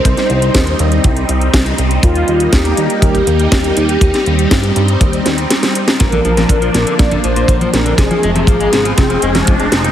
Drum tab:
HH |xxxxxxxxxxxxxxxx|xxxxxxxxxxxxxxxx|xxxxxxxxxxxxxxxx|xxxxxxxxxxxxxxxx|
SD |-o--o-------o---|----o-------o---|-o--o-----o-oo-o|o--o--o-o-----o-|
CG |----------------|----------------|----------------|-o-o---------o--|
BD |o---o---o---o---|o---o---oo--o---|o---o---o-------|o---o---oo--o---|

HH |xxxxxxxxxxxxxxxx|
SD |o-----o-o--o--o-|
CG |-o-o-------o----|
BD |o---o---o---o---|